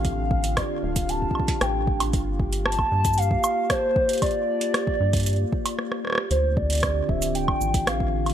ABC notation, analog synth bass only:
X:1
M:4/4
L:1/8
Q:1/4=115
K:Dm
V:1 name="Analog synth bass" clef=bass
A,,,2 z D,,,2 z A,,,2 | G,,,3 G,,2 z3 | z3 G,,2 z3 | D,,3 D,,,2 A,,,3 |]